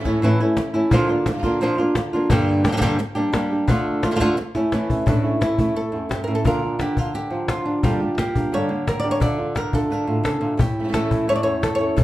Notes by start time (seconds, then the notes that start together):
0.00 E3 A3 C#4 E4
0.05 A2 E3 A3 C#4 E4, cajon bass, cajon slap
0.22 A2 E3 A3 C#4 E4, muted nylon-string guitar stroke
0.38 A3 C#4 E4
0.56 E3 A3 C#4 E4, muted nylon-string guitar stroke, cajon slap
0.74 A3 C#4 E4
0.90 A#2 D3 F3 A#3 D4 F4, cajon bass
1.09 A#3 D4 F4
1.25 D3 A#3 D4 F4, muted nylon-string guitar stroke, cajon slap
1.30 A#3 D4 F4
1.34 D3 A#3 D4 F4
1.38 D3 A#3 D4 F4
1.43 A#2 D3 A#3 D4 F4, cajon bass, cajon slap
1.60 A#2 F3 A#3 D4 F4, muted nylon-string guitar stroke
1.77 A#3 D4 F4
1.94 D3 A#3 D4 F4, muted nylon-string guitar stroke, cajon slap
2.13 A#3 D4 F4
2.29 G2 D3 G3 A#3 D4 G4, cajon bass
2.47 cajon slap
2.64 D3 G3 A#3 D4 G4, cajon slap
2.69 D3 G3 A#3 G4
2.73 D3 G3 D4 G4
2.77 G2 A#3 D4 G4, cajon bass
2.82 D3 G3 A#3 D4 G4
2.99 muted nylon-string guitar stroke
3.16 G3 A#3 D4 G4
3.33 G3 A#3 D4 G4, cajon slap
3.50 G3 A#3 D4 G4
3.68 D3 A3 D4 F4, cajon bass
4.03 A3 D4 F4, cajon slap
4.11 D3 A3 D4 F4
4.16 D3 A3 D4 F4
4.20 D3 A3 D4 F4, cajon bass, cajon slap
4.38 muted nylon-string guitar stroke
4.55 A3 C#4 E4, cajon slap
4.72 E3 A3 C#4 E4, cajon slap
4.90 A3 C#4 E4, cajon bass
5.06 A2 E3 A3 C#4 D4 E4, cajon bass
5.24 A3 C#4 E4, cajon slap
5.41 A3 C#4 E4, cajon slap
5.58 E3 A3 C#4 E4, cajon bass
5.76 A4, muted nylon-string guitar stroke, cajon slap
5.92 E2 A3 C#4 E4
6.09 G2 G4, cajon slap
6.24 A2 E4 A#4
6.29 A3 C#4
6.35 A4
6.45 A#2 D3 A#3 D4 F4 A#4, cajon bass
6.62 A#3 D4 F4
6.79 D3 A#3 D4 F4 G4, cajon slap
6.97 D3 A#3 D4 F4, cajon bass
7.14 G4, muted nylon-string guitar stroke, cajon slap
7.30 F3 A#3 D4 F4
7.48 F4, cajon slap
7.66 A#3 D4 F4
7.83 G2 D3 G3 A#3 D4 F4 G4, cajon bass
8.01 G3 A#3 D4 G4
8.18 A#3 G4, muted nylon-string guitar stroke, cajon slap
8.35 G3 A#3 D4 G4, cajon bass
8.52 G2 D3 G3 A#3 D4 G4 C#5
8.69 D3 G3 A#3 D4 G4
8.87 A#4, muted nylon-string guitar stroke, cajon slap
9.00 D5
9.04 G3 A#3 D4 G4
9.11 C#5
9.21 D3 A3 D4 F4 D5, cajon bass
9.38 A3 D4 F4, cajon slap
9.55 D4 A#4, muted nylon-string guitar stroke, cajon slap
9.73 A3 D4 F4 A4, cajon bass
9.90 D3 A3 D4 F4 A#4
10.07 A2 A3 D4 F4
10.24 C#3 A4, muted nylon-string guitar stroke, cajon slap
10.41 A#2 A3 D4 F4
10.57 A2 G4, muted nylon-string guitar stroke, cajon bass
10.79 E3 A3 C#4 E4
10.84 E3 A3 C#4 E4
10.88 E3 A3 C#4 E4
10.93 A2 E3 A3 C#4 E4 A4, cajon slap
11.11 E4, cajon bass
11.27 A2 E3 A3 C#4 E4 C#5
11.35 D5
11.43 E2 A3 C#4 E4 C#5
11.62 A4, muted nylon-string guitar stroke, cajon slap
11.75 C#5
11.79 A3 C#4 E4 A4
11.96 A#2 A4, muted nylon-string guitar stroke, cajon bass